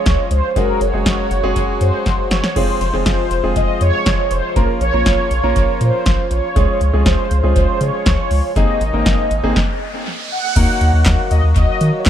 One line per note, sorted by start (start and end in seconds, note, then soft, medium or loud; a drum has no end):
0.00 2.52 C#3 medium
0.00 0.52 F3 medium
0.00 2.52 G#3 medium
0.00 0.52 F4 medium
0.00 0.28 C#5 loud
0.06 0.16 C#2 loud
0.06 kick loud
0.06 snare loud
0.06 closed hi-hat medium
0.31 0.41 C#2 loud
0.31 0.55 C5 loud
0.31 closed hi-hat medium
0.56 0.66 F#1 loud
0.56 2.54 F#3 medium
0.56 0.79 G#3 medium
0.56 0.79 C#4 medium
0.56 2.54 F#4 medium
0.56 0.79 F#4 medium
0.56 0.79 G#4 medium
0.56 0.80 A#4 medium
0.56 kick loud
0.56 closed hi-hat medium
0.81 0.91 F#1 loud
0.81 1.84 C#5 loud
0.81 closed hi-hat medium
0.94 1.03 F#1 medium
0.94 1.24 G#3 medium
0.94 1.24 C#4 medium
0.94 1.24 F#4 medium
0.94 1.24 G#4 medium
1.06 1.16 F#1 loud
1.06 kick loud
1.06 snare loud
1.06 closed hi-hat medium
1.31 1.41 F#1 loud
1.31 closed hi-hat medium
1.43 1.53 F#1 medium
1.43 2.05 G#3 medium
1.43 2.05 C#4 medium
1.43 2.05 F#4 medium
1.43 2.05 G#4 medium
1.56 1.66 F#1 loud
1.56 kick loud
1.56 closed hi-hat medium
1.81 1.91 F#2 loud
1.81 2.28 C5 loud
1.81 closed hi-hat medium
2.06 2.16 F#1 loud
2.06 kick loud
2.06 snare medium
2.06 closed hi-hat medium
2.31 2.41 F#1 loud
2.31 2.57 C#5 loud
2.31 snare medium
2.31 closed hi-hat medium
2.44 snare medium
2.56 2.66 F1 loud
2.56 4.54 C3 medium
2.56 8.52 F3 medium
2.56 4.54 G#3 medium
2.56 2.79 G#3 medium
2.56 2.79 C4 medium
2.56 4.54 F4 medium
2.56 2.79 F4 medium
2.56 2.79 G#4 medium
2.56 3.05 C5 loud
2.56 kick loud
2.56 crash medium
2.81 2.91 F1 loud
2.81 closed hi-hat medium
2.94 3.04 F1 medium
2.94 3.24 G#3 medium
2.94 3.24 C4 medium
2.94 3.24 F4 medium
2.94 3.24 G#4 medium
3.06 3.16 F1 loud
3.06 3.53 C5 medium
3.06 kick loud
3.06 snare loud
3.06 closed hi-hat medium
3.31 3.41 F1 medium
3.31 closed hi-hat medium
3.44 3.54 F1 medium
3.44 4.05 G#3 medium
3.44 4.05 C4 medium
3.44 4.05 F4 medium
3.44 4.05 G#4 medium
3.56 3.66 F1 loud
3.56 3.82 D#5 loud
3.56 kick loud
3.56 closed hi-hat medium
3.81 3.91 F2 medium
3.81 4.33 C#5 loud
3.81 closed hi-hat medium
4.06 4.16 F1 loud
4.06 kick loud
4.06 snare loud
4.06 closed hi-hat medium
4.31 4.41 F1 loud
4.31 4.57 C5 medium
4.31 closed hi-hat medium
4.56 4.66 A#1 loud
4.56 8.52 C#3 medium
4.56 4.79 A#3 medium
4.56 6.54 A#3 medium
4.56 4.79 C#4 medium
4.56 4.79 F4 medium
4.56 8.52 F4 medium
4.56 4.79 A#4 medium
4.56 4.68 A#4 medium
4.56 kick loud
4.56 closed hi-hat medium
4.81 4.91 A#1 loud
4.81 5.77 C#5 loud
4.81 closed hi-hat medium
4.94 5.04 A#1 loud
4.94 5.24 A#3 medium
4.94 5.24 C#4 medium
4.94 5.24 F4 medium
4.94 5.24 A#4 medium
5.06 5.16 A#1 medium
5.06 kick loud
5.06 snare loud
5.06 closed hi-hat medium
5.31 5.41 A#1 loud
5.31 closed hi-hat medium
5.43 5.53 A#1 medium
5.43 6.05 A#3 medium
5.43 6.05 C#4 medium
5.43 6.05 F4 medium
5.43 6.05 A#4 medium
5.56 5.66 A#1 loud
5.56 kick loud
5.56 closed hi-hat medium
5.81 5.91 A#2 loud
5.81 6.33 C5 loud
5.81 closed hi-hat medium
6.06 6.16 A#1 loud
6.06 kick loud
6.06 snare loud
6.06 closed hi-hat medium
6.31 6.41 A#1 loud
6.31 7.02 C#5 loud
6.31 closed hi-hat medium
6.56 6.66 C#2 loud
6.56 6.79 G#3 medium
6.56 9.53 G#3 medium
6.56 6.79 C#4 medium
6.56 6.79 F4 medium
6.56 6.79 G#4 medium
6.56 kick loud
6.56 closed hi-hat medium
6.81 6.91 C#2 medium
6.81 closed hi-hat medium
6.93 7.03 C#2 loud
6.93 7.24 G#3 medium
6.93 7.24 C#4 medium
6.93 7.24 F4 medium
6.93 7.24 G#4 medium
7.06 7.16 C#2 loud
7.06 7.55 C5 medium
7.06 kick loud
7.06 snare loud
7.06 closed hi-hat medium
7.31 7.41 C#2 loud
7.31 closed hi-hat medium
7.43 7.53 C#2 loud
7.43 8.05 G#3 medium
7.43 8.05 C#4 medium
7.43 8.05 F4 medium
7.43 8.05 G#4 medium
7.56 7.66 C#2 loud
7.56 7.82 C5 medium
7.56 kick loud
7.56 closed hi-hat medium
7.81 7.91 C#3 loud
7.81 8.52 C#5 loud
7.81 closed hi-hat medium
8.06 8.16 C#2 loud
8.06 kick loud
8.06 snare loud
8.06 closed hi-hat medium
8.31 8.41 C#2 loud
8.31 open hi-hat medium
8.56 8.66 G#1 loud
8.56 9.55 C3 medium
8.56 9.55 A#3 medium
8.56 8.79 A#3 medium
8.56 8.79 C4 medium
8.56 9.55 D#4 medium
8.56 8.79 D#4 medium
8.56 8.79 G#4 medium
8.56 10.02 D#5 loud
8.56 kick loud
8.56 closed hi-hat medium
8.56 riser medium
8.81 8.91 G#1 loud
8.81 closed hi-hat medium
8.94 9.03 G#1 loud
8.94 9.24 A#3 medium
8.94 9.24 C4 medium
8.94 9.24 D#4 medium
8.94 9.24 A#4 medium
9.06 9.16 G#1 loud
9.06 kick loud
9.06 snare loud
9.06 closed hi-hat medium
9.31 9.41 G#1 loud
9.31 closed hi-hat medium
9.44 9.53 G#1 medium
9.44 9.56 A#3 medium
9.44 9.56 C4 medium
9.44 9.56 D#4 medium
9.44 9.56 G#4 loud
9.56 kick loud
9.56 snare medium
10.32 11.34 F#5 loud
10.56 10.66 D#2 loud
10.56 12.10 D#3 medium
10.56 12.10 F#3 medium
10.56 11.18 A#3 medium
10.56 12.10 A#3 medium
10.56 11.18 D#4 medium
10.56 11.18 F#4 medium
10.56 12.10 F#4 medium
10.56 11.18 A#4 medium
10.56 kick loud
10.56 closed hi-hat medium
10.56 crash medium
10.81 10.91 D#2 loud
10.81 closed hi-hat medium
10.94 11.03 D#2 loud
11.06 11.16 D#2 loud
11.06 kick loud
11.06 snare loud
11.06 clap medium
11.06 closed hi-hat medium
11.31 11.41 D#2 loud
11.31 11.43 D#5 medium
11.31 closed hi-hat medium
11.44 11.54 D#2 medium
11.56 11.66 D#2 loud
11.56 12.01 D#5 loud
11.56 kick loud
11.56 closed hi-hat medium
11.81 11.91 D#3 loud
11.81 closed hi-hat medium
11.99 12.06 C#5 medium
12.06 12.10 D#2 loud
12.06 12.10 C5 loud
12.06 kick loud
12.06 snare loud
12.06 clap medium
12.06 closed hi-hat medium